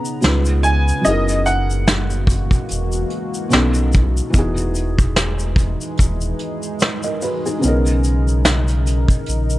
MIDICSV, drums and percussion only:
0, 0, Header, 1, 2, 480
1, 0, Start_track
1, 0, Key_signature, 5, "major"
1, 0, Tempo, 821918
1, 613, Time_signature, 4, 2, 24, 8
1, 5599, End_track
2, 0, Start_track
2, 0, Title_t, "Drums"
2, 29, Note_on_c, 9, 82, 48
2, 88, Note_off_c, 9, 82, 0
2, 129, Note_on_c, 9, 82, 57
2, 132, Note_on_c, 9, 42, 75
2, 141, Note_on_c, 9, 38, 106
2, 187, Note_off_c, 9, 82, 0
2, 190, Note_off_c, 9, 42, 0
2, 199, Note_off_c, 9, 38, 0
2, 264, Note_on_c, 9, 82, 54
2, 323, Note_off_c, 9, 82, 0
2, 372, Note_on_c, 9, 82, 54
2, 380, Note_on_c, 9, 46, 38
2, 430, Note_off_c, 9, 82, 0
2, 438, Note_off_c, 9, 46, 0
2, 515, Note_on_c, 9, 82, 47
2, 573, Note_off_c, 9, 82, 0
2, 613, Note_on_c, 9, 82, 72
2, 619, Note_on_c, 9, 42, 72
2, 671, Note_off_c, 9, 82, 0
2, 677, Note_off_c, 9, 42, 0
2, 749, Note_on_c, 9, 82, 56
2, 807, Note_off_c, 9, 82, 0
2, 853, Note_on_c, 9, 82, 48
2, 858, Note_on_c, 9, 42, 57
2, 912, Note_off_c, 9, 82, 0
2, 917, Note_off_c, 9, 42, 0
2, 994, Note_on_c, 9, 82, 50
2, 1052, Note_off_c, 9, 82, 0
2, 1095, Note_on_c, 9, 38, 103
2, 1097, Note_on_c, 9, 82, 65
2, 1101, Note_on_c, 9, 42, 73
2, 1153, Note_off_c, 9, 38, 0
2, 1156, Note_off_c, 9, 82, 0
2, 1159, Note_off_c, 9, 42, 0
2, 1227, Note_on_c, 9, 82, 47
2, 1285, Note_off_c, 9, 82, 0
2, 1326, Note_on_c, 9, 36, 99
2, 1338, Note_on_c, 9, 82, 50
2, 1340, Note_on_c, 9, 42, 69
2, 1385, Note_off_c, 9, 36, 0
2, 1397, Note_off_c, 9, 82, 0
2, 1398, Note_off_c, 9, 42, 0
2, 1465, Note_on_c, 9, 36, 87
2, 1472, Note_on_c, 9, 82, 46
2, 1482, Note_on_c, 9, 42, 41
2, 1524, Note_off_c, 9, 36, 0
2, 1530, Note_off_c, 9, 82, 0
2, 1541, Note_off_c, 9, 42, 0
2, 1569, Note_on_c, 9, 42, 78
2, 1583, Note_on_c, 9, 82, 69
2, 1627, Note_off_c, 9, 42, 0
2, 1642, Note_off_c, 9, 82, 0
2, 1706, Note_on_c, 9, 82, 51
2, 1764, Note_off_c, 9, 82, 0
2, 1811, Note_on_c, 9, 42, 68
2, 1870, Note_off_c, 9, 42, 0
2, 1952, Note_on_c, 9, 82, 44
2, 2010, Note_off_c, 9, 82, 0
2, 2049, Note_on_c, 9, 82, 57
2, 2054, Note_on_c, 9, 42, 77
2, 2063, Note_on_c, 9, 38, 122
2, 2107, Note_off_c, 9, 82, 0
2, 2112, Note_off_c, 9, 42, 0
2, 2121, Note_off_c, 9, 38, 0
2, 2185, Note_on_c, 9, 82, 49
2, 2244, Note_off_c, 9, 82, 0
2, 2292, Note_on_c, 9, 82, 50
2, 2301, Note_on_c, 9, 42, 55
2, 2305, Note_on_c, 9, 36, 93
2, 2350, Note_off_c, 9, 82, 0
2, 2359, Note_off_c, 9, 42, 0
2, 2363, Note_off_c, 9, 36, 0
2, 2436, Note_on_c, 9, 82, 49
2, 2494, Note_off_c, 9, 82, 0
2, 2533, Note_on_c, 9, 82, 71
2, 2535, Note_on_c, 9, 36, 102
2, 2539, Note_on_c, 9, 42, 68
2, 2592, Note_off_c, 9, 82, 0
2, 2594, Note_off_c, 9, 36, 0
2, 2598, Note_off_c, 9, 42, 0
2, 2670, Note_on_c, 9, 82, 54
2, 2728, Note_off_c, 9, 82, 0
2, 2774, Note_on_c, 9, 82, 51
2, 2780, Note_on_c, 9, 42, 61
2, 2832, Note_off_c, 9, 82, 0
2, 2838, Note_off_c, 9, 42, 0
2, 2911, Note_on_c, 9, 36, 98
2, 2914, Note_on_c, 9, 82, 54
2, 2970, Note_off_c, 9, 36, 0
2, 2973, Note_off_c, 9, 82, 0
2, 3015, Note_on_c, 9, 38, 111
2, 3018, Note_on_c, 9, 82, 63
2, 3021, Note_on_c, 9, 42, 78
2, 3073, Note_off_c, 9, 38, 0
2, 3076, Note_off_c, 9, 82, 0
2, 3079, Note_off_c, 9, 42, 0
2, 3149, Note_on_c, 9, 82, 47
2, 3207, Note_off_c, 9, 82, 0
2, 3247, Note_on_c, 9, 36, 93
2, 3259, Note_on_c, 9, 82, 50
2, 3260, Note_on_c, 9, 42, 67
2, 3305, Note_off_c, 9, 36, 0
2, 3317, Note_off_c, 9, 82, 0
2, 3318, Note_off_c, 9, 42, 0
2, 3393, Note_on_c, 9, 82, 51
2, 3403, Note_on_c, 9, 42, 41
2, 3451, Note_off_c, 9, 82, 0
2, 3461, Note_off_c, 9, 42, 0
2, 3488, Note_on_c, 9, 42, 73
2, 3499, Note_on_c, 9, 36, 82
2, 3503, Note_on_c, 9, 82, 71
2, 3547, Note_off_c, 9, 42, 0
2, 3557, Note_off_c, 9, 36, 0
2, 3562, Note_off_c, 9, 82, 0
2, 3626, Note_on_c, 9, 82, 46
2, 3685, Note_off_c, 9, 82, 0
2, 3732, Note_on_c, 9, 42, 70
2, 3790, Note_off_c, 9, 42, 0
2, 3870, Note_on_c, 9, 82, 42
2, 3929, Note_off_c, 9, 82, 0
2, 3969, Note_on_c, 9, 82, 59
2, 3974, Note_on_c, 9, 42, 80
2, 3983, Note_on_c, 9, 38, 116
2, 4028, Note_off_c, 9, 82, 0
2, 4033, Note_off_c, 9, 42, 0
2, 4042, Note_off_c, 9, 38, 0
2, 4105, Note_on_c, 9, 82, 48
2, 4163, Note_off_c, 9, 82, 0
2, 4213, Note_on_c, 9, 82, 50
2, 4222, Note_on_c, 9, 46, 42
2, 4272, Note_off_c, 9, 82, 0
2, 4280, Note_off_c, 9, 46, 0
2, 4357, Note_on_c, 9, 82, 47
2, 4415, Note_off_c, 9, 82, 0
2, 4456, Note_on_c, 9, 82, 67
2, 4460, Note_on_c, 9, 42, 70
2, 4514, Note_off_c, 9, 82, 0
2, 4518, Note_off_c, 9, 42, 0
2, 4592, Note_on_c, 9, 82, 53
2, 4651, Note_off_c, 9, 82, 0
2, 4695, Note_on_c, 9, 82, 52
2, 4700, Note_on_c, 9, 42, 58
2, 4753, Note_off_c, 9, 82, 0
2, 4758, Note_off_c, 9, 42, 0
2, 4835, Note_on_c, 9, 82, 51
2, 4893, Note_off_c, 9, 82, 0
2, 4935, Note_on_c, 9, 38, 105
2, 4937, Note_on_c, 9, 82, 66
2, 4941, Note_on_c, 9, 42, 78
2, 4993, Note_off_c, 9, 38, 0
2, 4995, Note_off_c, 9, 82, 0
2, 4999, Note_off_c, 9, 42, 0
2, 5068, Note_on_c, 9, 82, 46
2, 5075, Note_on_c, 9, 42, 53
2, 5127, Note_off_c, 9, 82, 0
2, 5134, Note_off_c, 9, 42, 0
2, 5178, Note_on_c, 9, 82, 49
2, 5180, Note_on_c, 9, 42, 74
2, 5237, Note_off_c, 9, 82, 0
2, 5238, Note_off_c, 9, 42, 0
2, 5306, Note_on_c, 9, 36, 93
2, 5313, Note_on_c, 9, 82, 50
2, 5364, Note_off_c, 9, 36, 0
2, 5371, Note_off_c, 9, 82, 0
2, 5408, Note_on_c, 9, 42, 72
2, 5425, Note_on_c, 9, 82, 76
2, 5467, Note_off_c, 9, 42, 0
2, 5483, Note_off_c, 9, 82, 0
2, 5547, Note_on_c, 9, 82, 52
2, 5599, Note_off_c, 9, 82, 0
2, 5599, End_track
0, 0, End_of_file